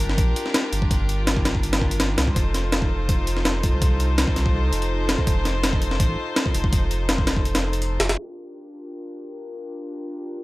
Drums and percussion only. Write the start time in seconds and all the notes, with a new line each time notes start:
0.09 snare
0.18 kick, closed hi-hat
0.36 closed hi-hat
0.46 snare
0.54 snare, closed hi-hat
0.73 closed hi-hat
0.82 kick
0.91 kick, closed hi-hat
1.09 closed hi-hat
1.27 snare, closed hi-hat
1.37 kick
1.45 snare, closed hi-hat
1.55 kick
1.63 closed hi-hat
1.73 snare, closed hi-hat
1.82 kick
1.91 closed hi-hat
2.00 snare, closed hi-hat
2.18 snare, closed hi-hat
2.27 kick
2.36 kick, closed hi-hat
2.54 snare, closed hi-hat
2.72 snare, closed hi-hat
2.82 kick
3.09 kick, closed hi-hat
3.27 closed hi-hat
3.37 snare
3.45 snare, closed hi-hat
3.63 kick, closed hi-hat
3.82 kick, closed hi-hat
4.00 closed hi-hat
4.18 snare, closed hi-hat
4.28 kick
4.36 snare, closed hi-hat
4.46 kick
4.73 closed hi-hat
4.82 closed hi-hat
5.09 snare, closed hi-hat
5.18 kick
5.27 kick, closed hi-hat
5.45 snare, closed hi-hat
5.64 snare, closed hi-hat
5.73 kick
5.82 closed hi-hat
5.91 snare
6.00 kick, closed hi-hat
6.36 snare, closed hi-hat
6.46 kick
6.54 closed hi-hat
6.64 kick
6.73 kick, closed hi-hat
6.91 closed hi-hat
7.09 snare, closed hi-hat
7.18 kick
7.27 snare, closed hi-hat
7.37 kick
7.45 closed hi-hat
7.55 snare, closed hi-hat
7.73 closed hi-hat
7.82 closed hi-hat
8.00 snare, closed hi-hat
8.09 snare, closed hi-hat